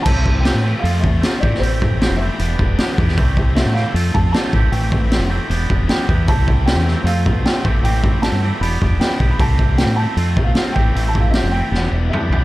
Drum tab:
CC |x---------------|----------------|----------------|----------------|
HH |----o---o---o---|o---o---o---o---|o---o---o---o---|o---o---o---o---|
SD |----o-------o--o|----o-------o--o|----o-o-----o---|----o-------o---|
T2 |----------------|----------------|----------------|----------------|
FT |----------------|----------------|----------------|----------------|
BD |o-o-------o---o-|--o-------o---o-|o-o-------o---o-|--o-------o---o-|

CC |----------------|----------------|----------------|----------------|
HH |o---o---o---o---|o---o---o---o---|o---o---o---o---|o---o-----------|
SD |----o-o-----o---|----o-------o---|----o-------o---|----o---o-------|
T2 |----------------|----------------|----------------|------------o---|
FT |----------------|----------------|----------------|--------------o-|
BD |o-o-------o---o-|--o-------o---o-|o-o-------o---o-|--o-------------|